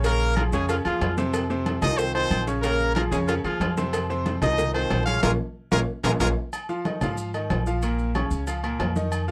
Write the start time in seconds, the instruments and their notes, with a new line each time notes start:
Already playing: upright bass A#1
0.04 grand piano C#3 C#4 C#5, horn section A#3 A#4, cowbell, high conga, low agogo, maracas
0.20 high conga, maracas
0.36 grand piano F3 F4 G#4, horn section A#3 A#4, cowbell, high conga, low agogo, maracas
0.52 upright bass F2, grand piano C#3 C#4 C#5, horn section G#3 G#4, cowbell, high conga, maracas
0.69 horn section F3 F4, cowbell, high conga, low agogo, maracas
0.85 upright bass D#2, grand piano F3 F4 G#4, horn section F3 F4, high conga, low agogo, maracas
1.01 upright bass F2, cowbell, high conga, low timbale, low agogo, maracas
1.17 grand piano C3 C4 C5, cowbell, high conga, maracas
1.34 cowbell, high conga, low agogo, maracas
1.50 grand piano C3 C4 C5, high conga, maracas
1.66 cowbell, high conga, low agogo, maracas
1.82 upright bass C2, grand piano D#3 D#4 F4, horn section D#4 D#5, cowbell, high conga, low conga, low agogo, maracas
1.98 horn section C4 C5, cowbell, high conga, maracas
2.14 grand piano D#3 D#4 F4, horn section C4 C5, high conga, low agogo, maracas
2.30 upright bass A#1, cowbell, high conga, low agogo, maracas
2.47 grand piano C#3 C#4 C#5, cowbell, maracas
2.62 grand piano C#3 C#4 C#5, horn section A#3 A#4, cowbell, high conga, low agogo, maracas
2.80 high conga, maracas
2.95 grand piano F3 F4 G#4, horn section A#3 A#4, cowbell, high conga, low agogo, maracas
3.11 upright bass F2, grand piano C#3 C#4 C#5, horn section G#3 G#4, cowbell, maracas
3.28 horn section F3 F4, cowbell, high conga, low agogo, maracas
3.44 upright bass D#2, grand piano F3 F4 G#4, horn section F3 F4, high conga, low agogo, maracas
3.60 upright bass F2, cowbell, high conga, low timbale, low agogo, maracas
3.77 grand piano C3 C4 C5, cowbell, high conga, maracas
3.93 cowbell, high conga, low agogo, maracas
4.10 grand piano C3 C4 C5, high conga, maracas
4.26 cowbell, high conga, low agogo, maracas
4.41 upright bass C2, grand piano D#3 D#4 F4, horn section D#4 D#5, cowbell, high conga, low conga, low agogo, maracas
4.58 cowbell, high conga, low conga, maracas
4.74 grand piano D#3 D#4 F4, horn section C4 C5, high conga, low agogo, maracas
4.90 upright bass A#1, cowbell, high conga, low timbale, low agogo, maracas
5.06 grand piano C#3 C#4 C#5, horn section F4 F5, cowbell, high conga, maracas
5.23 upright bass A#1, grand piano A#3 C#4 F4, horn section F4 G#4 A#4, cowbell, high conga, high timbale, maracas
5.72 upright bass A#1, grand piano A#3 C#4 F4, horn section F4 G#4 A#4, cowbell, high conga, high timbale, maracas
6.04 upright bass A#1, grand piano A#3 C#4 F4, horn section F4 G#4 A#4, cowbell, high conga, high timbale, maracas
6.20 upright bass A#1, grand piano A#3 C#4 F4, horn section F4 G#4 A#4, cowbell, high conga, high timbale, maracas
6.53 high conga, low agogo, maracas
6.69 grand piano F3 F4 F5, high conga, maracas
6.85 grand piano D#3 D#4 D#5, high conga, low agogo, maracas
7.01 upright bass G#2, grand piano F3 F4 F5, high conga, low conga, low agogo, maracas
7.17 high conga, maracas
7.34 grand piano D#3 D#4 D#5, high conga, low agogo, maracas
7.50 upright bass A#1, high conga, low timbale, low agogo, maracas
7.66 grand piano F3 F4 F5, maracas
7.82 grand piano A#2 A#3 A#4, high conga, low agogo, maracas
7.99 high conga, maracas
8.15 grand piano C#3 C#4 C#5, high conga, low agogo, maracas
8.31 upright bass C#2, high conga, maracas
8.47 grand piano F3 F4 F5, high conga, low agogo, maracas
8.63 grand piano A#2 A#3 A#4, high conga, low agogo, maracas
8.79 upright bass F2, high conga, low timbale, low agogo, maracas
8.96 grand piano D#3 D#4 D#5, high conga, maracas
9.12 high conga, low agogo, maracas
9.28 grand piano F3 F4, maracas